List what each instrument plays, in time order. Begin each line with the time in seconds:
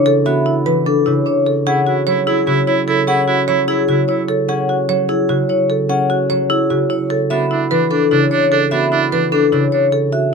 Already playing: harp C#3 E3 B3, marimba D4, vibraphone C#5
0.06 marimba A4
0.26 harp B3, marimba F#4, vibraphone E5
0.46 marimba E4
0.66 harp E3, marimba B4
0.86 marimba D4, vibraphone A4
1.06 harp C#3, marimba E4
1.26 marimba D4, vibraphone C#5
1.46 marimba A4
1.66 harp C#4, oboe E4, marimba G#4, vibraphone F#5
1.87 oboe E4, marimba F#4
2.07 harp F#3, oboe E4, marimba C#5
2.26 oboe E4, marimba E4, vibraphone G#4
2.47 harp C#3, oboe E4, marimba F#4
2.67 oboe E4, marimba E4, vibraphone C#5
2.88 oboe E4, marimba A4
3.07 harp C#4, oboe E4, marimba G#4, vibraphone F#5
3.27 oboe E4, marimba F#4
3.48 harp F#3, oboe E4, marimba C#5
3.68 marimba E4, oboe E4, vibraphone G#4
3.88 harp C#3, oboe E4, marimba F#4
4.08 marimba E4, oboe E4, vibraphone C#5
4.28 marimba A4
4.48 harp C#4, marimba G#4, vibraphone F#5
4.69 marimba F#4
4.89 harp F#3, marimba C#5
5.09 marimba E4, vibraphone G#4
5.29 harp C#3, marimba F#4
5.49 marimba E4, vibraphone C#5
5.70 marimba A4
5.89 harp C#4, marimba G#4, vibraphone F#5
6.10 marimba F#4
6.30 harp F#3, marimba C#5
6.50 marimba E4, vibraphone G#4
6.70 harp C#3, marimba F#4
6.90 marimba E4, vibraphone C#5
7.10 marimba A4
7.30 harp B3, oboe D4, marimba F#4, vibraphone E5
7.51 oboe D4, marimba E4
7.71 harp E3, oboe D4, marimba B4
7.91 marimba D4, oboe D4, vibraphone A4
8.11 harp C#3, oboe D4, marimba E4
8.31 oboe D4, vibraphone C#5
8.52 oboe D4, marimba A4
8.71 harp B3, oboe D4, marimba F#4, vibraphone E5
8.92 oboe D4, marimba E4
9.11 harp E3, oboe D4, marimba B4
9.32 oboe D4, marimba D4, vibraphone A4
9.52 harp C#3, oboe D4, marimba E4
9.72 oboe D4, vibraphone C#5
9.92 marimba A4
10.12 marimba F#4, vibraphone E5